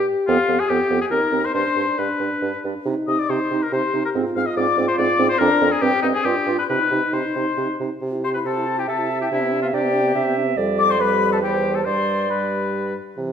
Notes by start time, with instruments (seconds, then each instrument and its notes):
Already playing: french horn G4
0.27 bassoon F2, clarinet B3, oboe F4, flute F5
0.48 bassoon F2, clarinet B3
0.59 oboe G#4, flute G#5
0.69 bassoon F2, clarinet B3, oboe G4, flute G5
0.90 bassoon F2, clarinet B3
1.01 oboe G#4, flute G#5
1.11 bassoon D#2, clarinet C4, french horn D#4, oboe A#4, flute A#5
1.32 bassoon D#2, clarinet C4
1.45 oboe C5, flute C6
1.54 bassoon G2, french horn D4, clarinet D4, oboe C5, flute C6
1.76 bassoon G2, clarinet D4
1.97 bassoon G2, clarinet D4, oboe B4, flute B5
2.20 bassoon G2, clarinet D4
2.42 bassoon G2, clarinet D4
2.64 bassoon G2, clarinet D4
2.86 bassoon C3, clarinet D#4, french horn D#4
3.07 bassoon C3, clarinet D#4, oboe D#5, flute D#6
3.19 oboe D5, flute D6
3.29 bassoon C3, clarinet D#4, oboe C5, flute C6
3.51 bassoon C3, clarinet D#4
3.62 oboe A#4, flute A#5
3.72 bassoon C3, clarinet D#4, french horn G4, oboe C5, flute C6
3.94 bassoon C3, clarinet D#4
4.05 oboe A#4, flute A#5
4.15 bassoon G#2, clarinet C4, french horn F4
4.36 bassoon G#2, clarinet C4, oboe F5, flute F6
4.46 oboe D#5, flute D#6
4.57 bassoon G#2, clarinet C4, oboe D5, flute D6
4.77 bassoon G#2, clarinet C4
4.88 oboe C5, flute C6
4.98 bassoon G#2, clarinet C4, oboe D5, flute D6
5.19 bassoon G#2, clarinet C4
5.29 oboe C5, flute C6
5.39 bassoon F2, clarinet C4, french horn D4, oboe A#4, flute A#5
5.61 bassoon F2, clarinet C4
5.72 oboe G#4, flute G#5
5.81 bassoon G2, french horn C4, clarinet C4, oboe G4, flute G5
6.02 bassoon G2, clarinet C4, oboe D#4, flute D#5
6.14 oboe G#4, flute G#5
6.24 bassoon G2, french horn D4, clarinet F4, oboe G4, flute G5
6.46 bassoon G2, clarinet F4
6.58 oboe B4, flute B5
6.69 bassoon C3, french horn D#4, clarinet D#4, oboe B4, flute B5
6.91 bassoon C3, clarinet D#4
7.13 bassoon C3, clarinet D#4, oboe C5, flute C6
7.35 bassoon C3, clarinet D#4
7.57 bassoon C3, clarinet D#4
7.80 bassoon C3, clarinet D#4
8.02 bassoon C3, french horn G4
8.14 french horn E4
8.24 french horn G4, oboe C5, flute C6
8.34 french horn E4, oboe B4, flute B5
8.45 bassoon C3, french horn G4, oboe A4, clarinet C5, flute A5
8.57 french horn E4
8.67 french horn G4
8.78 french horn E4, oboe G4, flute G5
8.88 bassoon C3, french horn G4, oboe A4, clarinet E5, flute A5
8.99 french horn E4
9.10 french horn G4
9.21 french horn E4, oboe G4, flute G5
9.31 bassoon C3, french horn D4, oboe E4, flute E5
9.42 french horn B3
9.52 french horn D4
9.62 french horn B3, oboe F4, flute F5
9.73 bassoon C3, french horn D4, oboe G4, clarinet D5, flute G5
9.84 french horn B3
9.94 french horn D4
10.05 french horn B3
10.15 bassoon C3, french horn D4, clarinet E5
10.25 french horn B3
10.36 french horn D4
10.46 french horn B3
10.57 bassoon F2, french horn G3, clarinet D5
10.79 oboe D5, flute D6
10.89 oboe C5, flute C6
10.99 french horn G3, oboe B4, clarinet B4, flute B5
11.32 oboe A4, flute A5
11.42 bassoon E2, french horn G3, oboe G4, clarinet C5, flute G5
11.75 oboe A4, flute A5
11.85 bassoon G2, french horn G3, oboe C5, clarinet D5, flute C6
12.30 french horn G3, oboe B4, flute B5
13.17 bassoon C3, french horn E3